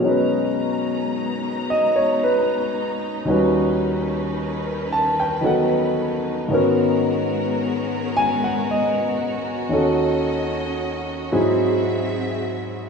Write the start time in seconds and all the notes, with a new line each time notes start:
Already playing: B2 A#4
0.00 F#3 G#3 B3 C#4 D#4 A#5
0.04 C#4 D#4
0.09 B4
1.70 D#5
1.96 C#5
2.23 B4
3.25 D#2 D#3 G3 C#4 B4
3.29 F#4 B4
4.93 A5
5.20 G5
5.41 D#3 F#3 B3 D#4 A4
5.46 F#5
6.48 G#2 D#3 B3 C#4 F#4 A#4
6.52 G#3 F#4 A#4
8.17 G#5
8.44 F#5
8.71 D#5
9.69 D#2 D#3 C#4 D#5
9.73 F#4 A4
11.32 G#2 F#3 C4 E4 G#4 E5